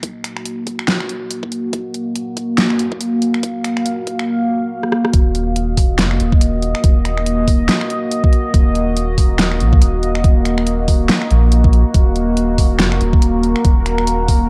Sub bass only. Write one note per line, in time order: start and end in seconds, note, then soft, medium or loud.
5.14 6.00 D#1 loud
5.99 6.19 F1 loud
6.20 6.73 D#1 medium
6.84 7.68 D#1 loud
8.54 9.62 D#1 loud
9.60 9.80 A#1 medium
9.82 10.23 D#1 loud
10.24 11.08 D#1 loud
11.31 11.84 A#1 loud
11.94 12.81 D#1 loud
12.79 12.99 F1 loud
13.01 13.54 D#1 medium
13.65 14.49 D#1 loud